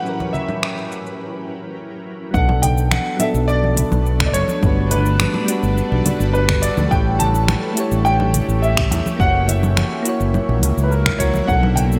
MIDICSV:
0, 0, Header, 1, 6, 480
1, 0, Start_track
1, 0, Key_signature, 2, "minor"
1, 0, Tempo, 571429
1, 47, Time_signature, 4, 2, 24, 8
1, 10072, End_track
2, 0, Start_track
2, 0, Title_t, "Grand piano"
2, 0, Program_c, 0, 0
2, 0, Note_on_c, 0, 78, 101
2, 249, Note_off_c, 0, 78, 0
2, 275, Note_on_c, 0, 76, 89
2, 968, Note_off_c, 0, 76, 0
2, 1964, Note_on_c, 0, 78, 97
2, 2203, Note_on_c, 0, 79, 94
2, 2213, Note_off_c, 0, 78, 0
2, 2428, Note_off_c, 0, 79, 0
2, 2446, Note_on_c, 0, 78, 89
2, 2685, Note_on_c, 0, 76, 92
2, 2694, Note_off_c, 0, 78, 0
2, 2739, Note_off_c, 0, 76, 0
2, 2920, Note_on_c, 0, 74, 104
2, 3567, Note_off_c, 0, 74, 0
2, 3580, Note_on_c, 0, 74, 73
2, 3641, Note_on_c, 0, 73, 107
2, 3643, Note_off_c, 0, 74, 0
2, 4125, Note_on_c, 0, 71, 96
2, 4139, Note_off_c, 0, 73, 0
2, 5308, Note_off_c, 0, 71, 0
2, 5321, Note_on_c, 0, 71, 94
2, 5561, Note_on_c, 0, 74, 98
2, 5571, Note_off_c, 0, 71, 0
2, 5804, Note_on_c, 0, 79, 104
2, 5811, Note_off_c, 0, 74, 0
2, 6040, Note_on_c, 0, 81, 99
2, 6053, Note_off_c, 0, 79, 0
2, 6490, Note_off_c, 0, 81, 0
2, 6761, Note_on_c, 0, 79, 120
2, 7242, Note_on_c, 0, 76, 91
2, 7258, Note_off_c, 0, 79, 0
2, 7728, Note_on_c, 0, 78, 107
2, 7739, Note_off_c, 0, 76, 0
2, 7968, Note_on_c, 0, 76, 84
2, 7975, Note_off_c, 0, 78, 0
2, 8894, Note_off_c, 0, 76, 0
2, 9102, Note_on_c, 0, 71, 64
2, 9160, Note_on_c, 0, 70, 74
2, 9164, Note_off_c, 0, 71, 0
2, 9386, Note_off_c, 0, 70, 0
2, 9396, Note_on_c, 0, 73, 83
2, 9639, Note_on_c, 0, 78, 95
2, 9649, Note_off_c, 0, 73, 0
2, 9875, Note_on_c, 0, 79, 91
2, 9890, Note_off_c, 0, 78, 0
2, 9930, Note_off_c, 0, 79, 0
2, 10072, End_track
3, 0, Start_track
3, 0, Title_t, "Synth keys"
3, 0, Program_c, 1, 88
3, 0, Control_c, 1, 64, 127
3, 22, Note_on_c, 1, 54, 70
3, 39, Note_on_c, 1, 61, 60
3, 56, Control_c, 1, 64, 0
3, 57, Note_on_c, 1, 64, 66
3, 76, Note_on_c, 1, 70, 76
3, 196, Control_c, 1, 64, 127
3, 1926, Note_off_c, 1, 54, 0
3, 1935, Note_off_c, 1, 61, 0
3, 1940, Note_on_c, 1, 54, 69
3, 1944, Note_off_c, 1, 64, 0
3, 1953, Note_off_c, 1, 70, 0
3, 1958, Note_on_c, 1, 59, 64
3, 1976, Note_on_c, 1, 62, 69
3, 1978, Control_c, 1, 64, 0
3, 1997, Note_on_c, 1, 69, 81
3, 2125, Control_c, 1, 64, 127
3, 2645, Note_off_c, 1, 54, 0
3, 2654, Note_off_c, 1, 59, 0
3, 2661, Note_on_c, 1, 54, 91
3, 2663, Note_off_c, 1, 62, 0
3, 2674, Note_off_c, 1, 69, 0
3, 2679, Note_on_c, 1, 59, 85
3, 2697, Note_on_c, 1, 62, 86
3, 2716, Note_on_c, 1, 69, 108
3, 3846, Note_off_c, 1, 54, 0
3, 3855, Note_off_c, 1, 59, 0
3, 3864, Note_off_c, 1, 62, 0
3, 3865, Note_on_c, 1, 55, 75
3, 3873, Note_off_c, 1, 69, 0
3, 3882, Note_on_c, 1, 62, 72
3, 3897, Control_c, 1, 64, 0
3, 3902, Note_on_c, 1, 66, 72
3, 3918, Note_on_c, 1, 71, 86
3, 4027, Control_c, 1, 64, 127
3, 4568, Note_off_c, 1, 55, 0
3, 4576, Note_off_c, 1, 62, 0
3, 4581, Note_on_c, 1, 55, 92
3, 4586, Note_off_c, 1, 66, 0
3, 4594, Note_off_c, 1, 71, 0
3, 4601, Note_on_c, 1, 62, 87
3, 4619, Note_on_c, 1, 66, 87
3, 4638, Note_on_c, 1, 71, 105
3, 5766, Note_off_c, 1, 55, 0
3, 5776, Note_off_c, 1, 62, 0
3, 5783, Note_on_c, 1, 57, 73
3, 5785, Note_off_c, 1, 66, 0
3, 5794, Note_off_c, 1, 71, 0
3, 5800, Note_on_c, 1, 64, 67
3, 5819, Control_c, 1, 64, 0
3, 5819, Note_on_c, 1, 67, 68
3, 5837, Note_on_c, 1, 73, 82
3, 5961, Control_c, 1, 64, 127
3, 6486, Note_off_c, 1, 57, 0
3, 6495, Note_off_c, 1, 64, 0
3, 6496, Note_on_c, 1, 57, 99
3, 6505, Note_off_c, 1, 67, 0
3, 6514, Note_off_c, 1, 73, 0
3, 6515, Note_on_c, 1, 64, 90
3, 6532, Note_on_c, 1, 67, 86
3, 6551, Note_on_c, 1, 73, 115
3, 7683, Note_off_c, 1, 57, 0
3, 7693, Note_off_c, 1, 64, 0
3, 7698, Note_on_c, 1, 58, 78
3, 7701, Note_off_c, 1, 67, 0
3, 7711, Note_off_c, 1, 73, 0
3, 7717, Note_on_c, 1, 64, 66
3, 7734, Note_on_c, 1, 66, 69
3, 7737, Control_c, 1, 64, 0
3, 7752, Note_on_c, 1, 73, 77
3, 7877, Control_c, 1, 64, 127
3, 8404, Note_off_c, 1, 58, 0
3, 8414, Note_off_c, 1, 64, 0
3, 8421, Note_on_c, 1, 58, 100
3, 8422, Note_off_c, 1, 66, 0
3, 8431, Note_off_c, 1, 73, 0
3, 8440, Note_on_c, 1, 64, 88
3, 8457, Note_on_c, 1, 66, 85
3, 8477, Note_on_c, 1, 73, 108
3, 9371, Note_off_c, 1, 58, 0
3, 9380, Note_off_c, 1, 64, 0
3, 9389, Note_off_c, 1, 66, 0
3, 9394, Note_on_c, 1, 58, 76
3, 9398, Note_off_c, 1, 73, 0
3, 9403, Note_on_c, 1, 64, 71
3, 9414, Note_on_c, 1, 66, 74
3, 9421, Note_on_c, 1, 70, 88
3, 9612, Note_off_c, 1, 58, 0
3, 9617, Note_off_c, 1, 64, 0
3, 9621, Note_on_c, 1, 54, 75
3, 9622, Note_off_c, 1, 66, 0
3, 9626, Note_off_c, 1, 70, 0
3, 9639, Note_on_c, 1, 59, 65
3, 9656, Note_on_c, 1, 62, 64
3, 9659, Control_c, 1, 64, 0
3, 9673, Note_on_c, 1, 69, 87
3, 9805, Control_c, 1, 64, 127
3, 10072, Note_off_c, 1, 54, 0
3, 10072, Note_off_c, 1, 59, 0
3, 10072, Note_off_c, 1, 62, 0
3, 10072, Note_off_c, 1, 69, 0
3, 10072, End_track
4, 0, Start_track
4, 0, Title_t, "Ambient pad"
4, 0, Program_c, 2, 92
4, 0, Note_on_c, 2, 61, 63
4, 975, Note_off_c, 2, 61, 0
4, 1969, Note_on_c, 2, 59, 73
4, 1972, Note_on_c, 2, 62, 85
4, 1973, Note_on_c, 2, 57, 79
4, 3869, Note_off_c, 2, 59, 0
4, 3871, Note_off_c, 2, 57, 0
4, 3886, Note_on_c, 2, 71, 90
4, 3887, Note_on_c, 2, 55, 75
4, 3888, Note_on_c, 2, 69, 70
4, 3889, Note_on_c, 2, 66, 72
4, 5776, Note_off_c, 2, 62, 0
4, 5788, Note_off_c, 2, 55, 0
4, 5788, Note_off_c, 2, 71, 0
4, 5789, Note_off_c, 2, 66, 0
4, 5789, Note_off_c, 2, 69, 0
4, 5808, Note_on_c, 2, 61, 71
4, 5809, Note_on_c, 2, 57, 79
4, 5813, Note_on_c, 2, 67, 81
4, 7708, Note_off_c, 2, 61, 0
4, 7709, Note_off_c, 2, 57, 0
4, 7711, Note_off_c, 2, 67, 0
4, 7730, Note_on_c, 2, 58, 73
4, 7732, Note_on_c, 2, 64, 83
4, 7734, Note_on_c, 2, 54, 80
4, 9630, Note_off_c, 2, 58, 0
4, 9630, Note_off_c, 2, 64, 0
4, 9631, Note_off_c, 2, 54, 0
4, 9649, Note_on_c, 2, 59, 75
4, 9651, Note_on_c, 2, 62, 85
4, 9652, Note_on_c, 2, 57, 78
4, 10072, Note_off_c, 2, 57, 0
4, 10072, Note_off_c, 2, 59, 0
4, 10072, Note_off_c, 2, 62, 0
4, 10072, End_track
5, 0, Start_track
5, 0, Title_t, "Fingered electric bass"
5, 0, Program_c, 3, 33
5, 1967, Note_on_c, 3, 35, 99
5, 2492, Note_off_c, 3, 35, 0
5, 2809, Note_on_c, 3, 35, 83
5, 3212, Note_off_c, 3, 35, 0
5, 3291, Note_on_c, 3, 35, 84
5, 3650, Note_off_c, 3, 35, 0
5, 3650, Note_on_c, 3, 30, 70
5, 3722, Note_off_c, 3, 30, 0
5, 3888, Note_on_c, 3, 31, 106
5, 4412, Note_off_c, 3, 31, 0
5, 4729, Note_on_c, 3, 31, 85
5, 4873, Note_off_c, 3, 31, 0
5, 4971, Note_on_c, 3, 35, 94
5, 5041, Note_off_c, 3, 35, 0
5, 5209, Note_on_c, 3, 31, 98
5, 5612, Note_off_c, 3, 31, 0
5, 5691, Note_on_c, 3, 38, 90
5, 5762, Note_off_c, 3, 38, 0
5, 5807, Note_on_c, 3, 33, 103
5, 6332, Note_off_c, 3, 33, 0
5, 6649, Note_on_c, 3, 33, 86
5, 7052, Note_off_c, 3, 33, 0
5, 7126, Note_on_c, 3, 33, 81
5, 7485, Note_off_c, 3, 33, 0
5, 7485, Note_on_c, 3, 40, 76
5, 7559, Note_off_c, 3, 40, 0
5, 7725, Note_on_c, 3, 30, 107
5, 8250, Note_off_c, 3, 30, 0
5, 8570, Note_on_c, 3, 30, 83
5, 8713, Note_off_c, 3, 30, 0
5, 8809, Note_on_c, 3, 34, 90
5, 8925, Note_off_c, 3, 34, 0
5, 8925, Note_on_c, 3, 37, 96
5, 9000, Note_off_c, 3, 37, 0
5, 9049, Note_on_c, 3, 37, 81
5, 9572, Note_off_c, 3, 37, 0
5, 9646, Note_on_c, 3, 35, 103
5, 10072, Note_off_c, 3, 35, 0
5, 10072, End_track
6, 0, Start_track
6, 0, Title_t, "Drums"
6, 50, Note_on_c, 9, 69, 35
6, 134, Note_off_c, 9, 69, 0
6, 170, Note_on_c, 9, 63, 84
6, 172, Note_on_c, 9, 69, 20
6, 254, Note_off_c, 9, 63, 0
6, 256, Note_off_c, 9, 69, 0
6, 287, Note_on_c, 9, 64, 74
6, 290, Note_on_c, 9, 69, 66
6, 371, Note_off_c, 9, 64, 0
6, 374, Note_off_c, 9, 69, 0
6, 408, Note_on_c, 9, 64, 71
6, 411, Note_on_c, 9, 69, 28
6, 492, Note_off_c, 9, 64, 0
6, 495, Note_off_c, 9, 69, 0
6, 530, Note_on_c, 9, 26, 66
6, 532, Note_on_c, 9, 69, 38
6, 614, Note_off_c, 9, 26, 0
6, 616, Note_off_c, 9, 69, 0
6, 652, Note_on_c, 9, 69, 18
6, 736, Note_off_c, 9, 69, 0
6, 772, Note_on_c, 9, 69, 68
6, 856, Note_off_c, 9, 69, 0
6, 893, Note_on_c, 9, 69, 30
6, 977, Note_off_c, 9, 69, 0
6, 1967, Note_on_c, 9, 36, 119
6, 1971, Note_on_c, 9, 69, 31
6, 2051, Note_off_c, 9, 36, 0
6, 2055, Note_off_c, 9, 69, 0
6, 2091, Note_on_c, 9, 64, 76
6, 2175, Note_off_c, 9, 64, 0
6, 2208, Note_on_c, 9, 42, 88
6, 2209, Note_on_c, 9, 64, 79
6, 2211, Note_on_c, 9, 69, 75
6, 2292, Note_off_c, 9, 42, 0
6, 2293, Note_off_c, 9, 64, 0
6, 2295, Note_off_c, 9, 69, 0
6, 2332, Note_on_c, 9, 69, 44
6, 2416, Note_off_c, 9, 69, 0
6, 2447, Note_on_c, 9, 63, 93
6, 2448, Note_on_c, 9, 26, 79
6, 2451, Note_on_c, 9, 69, 31
6, 2531, Note_off_c, 9, 63, 0
6, 2532, Note_off_c, 9, 26, 0
6, 2535, Note_off_c, 9, 69, 0
6, 2685, Note_on_c, 9, 42, 94
6, 2685, Note_on_c, 9, 64, 79
6, 2688, Note_on_c, 9, 69, 81
6, 2769, Note_off_c, 9, 42, 0
6, 2769, Note_off_c, 9, 64, 0
6, 2772, Note_off_c, 9, 69, 0
6, 2811, Note_on_c, 9, 69, 43
6, 2895, Note_off_c, 9, 69, 0
6, 2931, Note_on_c, 9, 69, 32
6, 3015, Note_off_c, 9, 69, 0
6, 3054, Note_on_c, 9, 63, 67
6, 3138, Note_off_c, 9, 63, 0
6, 3162, Note_on_c, 9, 64, 85
6, 3169, Note_on_c, 9, 42, 98
6, 3172, Note_on_c, 9, 69, 82
6, 3246, Note_off_c, 9, 64, 0
6, 3253, Note_off_c, 9, 42, 0
6, 3256, Note_off_c, 9, 69, 0
6, 3291, Note_on_c, 9, 64, 75
6, 3293, Note_on_c, 9, 69, 46
6, 3375, Note_off_c, 9, 64, 0
6, 3377, Note_off_c, 9, 69, 0
6, 3412, Note_on_c, 9, 69, 33
6, 3496, Note_off_c, 9, 69, 0
6, 3525, Note_on_c, 9, 64, 87
6, 3529, Note_on_c, 9, 36, 100
6, 3530, Note_on_c, 9, 26, 81
6, 3609, Note_off_c, 9, 64, 0
6, 3613, Note_off_c, 9, 36, 0
6, 3614, Note_off_c, 9, 26, 0
6, 3648, Note_on_c, 9, 42, 85
6, 3650, Note_on_c, 9, 69, 75
6, 3732, Note_off_c, 9, 42, 0
6, 3734, Note_off_c, 9, 69, 0
6, 3763, Note_on_c, 9, 63, 78
6, 3771, Note_on_c, 9, 69, 45
6, 3847, Note_off_c, 9, 63, 0
6, 3855, Note_off_c, 9, 69, 0
6, 3887, Note_on_c, 9, 64, 72
6, 3888, Note_on_c, 9, 36, 126
6, 3889, Note_on_c, 9, 69, 32
6, 3971, Note_off_c, 9, 64, 0
6, 3972, Note_off_c, 9, 36, 0
6, 3973, Note_off_c, 9, 69, 0
6, 4125, Note_on_c, 9, 42, 83
6, 4127, Note_on_c, 9, 69, 76
6, 4129, Note_on_c, 9, 64, 79
6, 4209, Note_off_c, 9, 42, 0
6, 4211, Note_off_c, 9, 69, 0
6, 4213, Note_off_c, 9, 64, 0
6, 4248, Note_on_c, 9, 69, 45
6, 4332, Note_off_c, 9, 69, 0
6, 4365, Note_on_c, 9, 26, 76
6, 4368, Note_on_c, 9, 69, 34
6, 4376, Note_on_c, 9, 63, 101
6, 4449, Note_off_c, 9, 26, 0
6, 4452, Note_off_c, 9, 69, 0
6, 4460, Note_off_c, 9, 63, 0
6, 4486, Note_on_c, 9, 64, 74
6, 4570, Note_off_c, 9, 64, 0
6, 4605, Note_on_c, 9, 42, 94
6, 4608, Note_on_c, 9, 69, 80
6, 4689, Note_off_c, 9, 42, 0
6, 4692, Note_off_c, 9, 69, 0
6, 4730, Note_on_c, 9, 69, 44
6, 4814, Note_off_c, 9, 69, 0
6, 4852, Note_on_c, 9, 69, 35
6, 4936, Note_off_c, 9, 69, 0
6, 4973, Note_on_c, 9, 63, 68
6, 5057, Note_off_c, 9, 63, 0
6, 5088, Note_on_c, 9, 42, 93
6, 5088, Note_on_c, 9, 64, 76
6, 5090, Note_on_c, 9, 69, 83
6, 5091, Note_off_c, 9, 64, 0
6, 5091, Note_on_c, 9, 64, 96
6, 5172, Note_off_c, 9, 42, 0
6, 5174, Note_off_c, 9, 69, 0
6, 5175, Note_off_c, 9, 64, 0
6, 5212, Note_on_c, 9, 69, 46
6, 5296, Note_off_c, 9, 69, 0
6, 5331, Note_on_c, 9, 69, 34
6, 5415, Note_off_c, 9, 69, 0
6, 5449, Note_on_c, 9, 26, 80
6, 5449, Note_on_c, 9, 36, 105
6, 5453, Note_on_c, 9, 64, 97
6, 5533, Note_off_c, 9, 26, 0
6, 5533, Note_off_c, 9, 36, 0
6, 5537, Note_off_c, 9, 64, 0
6, 5566, Note_on_c, 9, 42, 88
6, 5569, Note_on_c, 9, 69, 83
6, 5650, Note_off_c, 9, 42, 0
6, 5653, Note_off_c, 9, 69, 0
6, 5689, Note_on_c, 9, 64, 73
6, 5692, Note_on_c, 9, 69, 42
6, 5693, Note_on_c, 9, 63, 84
6, 5773, Note_off_c, 9, 64, 0
6, 5776, Note_off_c, 9, 69, 0
6, 5777, Note_off_c, 9, 63, 0
6, 5807, Note_on_c, 9, 36, 127
6, 5811, Note_on_c, 9, 69, 32
6, 5891, Note_off_c, 9, 36, 0
6, 5895, Note_off_c, 9, 69, 0
6, 6047, Note_on_c, 9, 42, 85
6, 6050, Note_on_c, 9, 64, 86
6, 6050, Note_on_c, 9, 69, 75
6, 6131, Note_off_c, 9, 42, 0
6, 6134, Note_off_c, 9, 64, 0
6, 6134, Note_off_c, 9, 69, 0
6, 6172, Note_on_c, 9, 69, 49
6, 6256, Note_off_c, 9, 69, 0
6, 6285, Note_on_c, 9, 63, 96
6, 6287, Note_on_c, 9, 26, 74
6, 6287, Note_on_c, 9, 64, 69
6, 6289, Note_on_c, 9, 69, 34
6, 6369, Note_off_c, 9, 63, 0
6, 6371, Note_off_c, 9, 26, 0
6, 6371, Note_off_c, 9, 64, 0
6, 6373, Note_off_c, 9, 69, 0
6, 6527, Note_on_c, 9, 42, 82
6, 6529, Note_on_c, 9, 69, 81
6, 6611, Note_off_c, 9, 42, 0
6, 6613, Note_off_c, 9, 69, 0
6, 6649, Note_on_c, 9, 69, 45
6, 6733, Note_off_c, 9, 69, 0
6, 6768, Note_on_c, 9, 69, 33
6, 6852, Note_off_c, 9, 69, 0
6, 6887, Note_on_c, 9, 63, 66
6, 6887, Note_on_c, 9, 64, 74
6, 6971, Note_off_c, 9, 63, 0
6, 6971, Note_off_c, 9, 64, 0
6, 7006, Note_on_c, 9, 42, 88
6, 7006, Note_on_c, 9, 64, 85
6, 7009, Note_on_c, 9, 69, 85
6, 7090, Note_off_c, 9, 42, 0
6, 7090, Note_off_c, 9, 64, 0
6, 7093, Note_off_c, 9, 69, 0
6, 7134, Note_on_c, 9, 69, 51
6, 7218, Note_off_c, 9, 69, 0
6, 7252, Note_on_c, 9, 69, 36
6, 7336, Note_off_c, 9, 69, 0
6, 7367, Note_on_c, 9, 36, 114
6, 7369, Note_on_c, 9, 64, 92
6, 7370, Note_on_c, 9, 26, 79
6, 7451, Note_off_c, 9, 36, 0
6, 7453, Note_off_c, 9, 64, 0
6, 7454, Note_off_c, 9, 26, 0
6, 7491, Note_on_c, 9, 42, 84
6, 7491, Note_on_c, 9, 64, 74
6, 7494, Note_on_c, 9, 69, 79
6, 7575, Note_off_c, 9, 42, 0
6, 7575, Note_off_c, 9, 64, 0
6, 7578, Note_off_c, 9, 69, 0
6, 7610, Note_on_c, 9, 63, 94
6, 7615, Note_on_c, 9, 69, 44
6, 7694, Note_off_c, 9, 63, 0
6, 7699, Note_off_c, 9, 69, 0
6, 7725, Note_on_c, 9, 36, 127
6, 7735, Note_on_c, 9, 69, 32
6, 7809, Note_off_c, 9, 36, 0
6, 7819, Note_off_c, 9, 69, 0
6, 7962, Note_on_c, 9, 64, 71
6, 7970, Note_on_c, 9, 42, 81
6, 7972, Note_on_c, 9, 69, 78
6, 8046, Note_off_c, 9, 64, 0
6, 8054, Note_off_c, 9, 42, 0
6, 8056, Note_off_c, 9, 69, 0
6, 8091, Note_on_c, 9, 64, 78
6, 8093, Note_on_c, 9, 69, 46
6, 8175, Note_off_c, 9, 64, 0
6, 8177, Note_off_c, 9, 69, 0
6, 8205, Note_on_c, 9, 63, 101
6, 8208, Note_on_c, 9, 26, 73
6, 8211, Note_on_c, 9, 69, 35
6, 8289, Note_off_c, 9, 63, 0
6, 8292, Note_off_c, 9, 26, 0
6, 8295, Note_off_c, 9, 69, 0
6, 8446, Note_on_c, 9, 42, 86
6, 8448, Note_on_c, 9, 69, 74
6, 8530, Note_off_c, 9, 42, 0
6, 8532, Note_off_c, 9, 69, 0
6, 8571, Note_on_c, 9, 69, 44
6, 8655, Note_off_c, 9, 69, 0
6, 8688, Note_on_c, 9, 64, 76
6, 8691, Note_on_c, 9, 69, 32
6, 8772, Note_off_c, 9, 64, 0
6, 8775, Note_off_c, 9, 69, 0
6, 8813, Note_on_c, 9, 63, 74
6, 8897, Note_off_c, 9, 63, 0
6, 8928, Note_on_c, 9, 64, 74
6, 8929, Note_on_c, 9, 42, 87
6, 8931, Note_on_c, 9, 69, 86
6, 9012, Note_off_c, 9, 64, 0
6, 9013, Note_off_c, 9, 42, 0
6, 9015, Note_off_c, 9, 69, 0
6, 9055, Note_on_c, 9, 69, 46
6, 9139, Note_off_c, 9, 69, 0
6, 9172, Note_on_c, 9, 69, 33
6, 9256, Note_off_c, 9, 69, 0
6, 9288, Note_on_c, 9, 36, 114
6, 9289, Note_on_c, 9, 64, 81
6, 9290, Note_off_c, 9, 64, 0
6, 9290, Note_on_c, 9, 26, 80
6, 9290, Note_on_c, 9, 64, 78
6, 9372, Note_off_c, 9, 36, 0
6, 9374, Note_off_c, 9, 26, 0
6, 9374, Note_off_c, 9, 64, 0
6, 9406, Note_on_c, 9, 36, 61
6, 9408, Note_on_c, 9, 42, 80
6, 9411, Note_on_c, 9, 69, 77
6, 9490, Note_off_c, 9, 36, 0
6, 9492, Note_off_c, 9, 42, 0
6, 9495, Note_off_c, 9, 69, 0
6, 9521, Note_on_c, 9, 63, 93
6, 9533, Note_on_c, 9, 69, 48
6, 9605, Note_off_c, 9, 63, 0
6, 9617, Note_off_c, 9, 69, 0
6, 9647, Note_on_c, 9, 36, 124
6, 9652, Note_on_c, 9, 69, 31
6, 9731, Note_off_c, 9, 36, 0
6, 9736, Note_off_c, 9, 69, 0
6, 9771, Note_on_c, 9, 64, 84
6, 9855, Note_off_c, 9, 64, 0
6, 9879, Note_on_c, 9, 64, 75
6, 9888, Note_on_c, 9, 42, 79
6, 9890, Note_on_c, 9, 69, 73
6, 9963, Note_off_c, 9, 64, 0
6, 9972, Note_off_c, 9, 42, 0
6, 9974, Note_off_c, 9, 69, 0
6, 10013, Note_on_c, 9, 69, 43
6, 10072, Note_off_c, 9, 69, 0
6, 10072, End_track
0, 0, End_of_file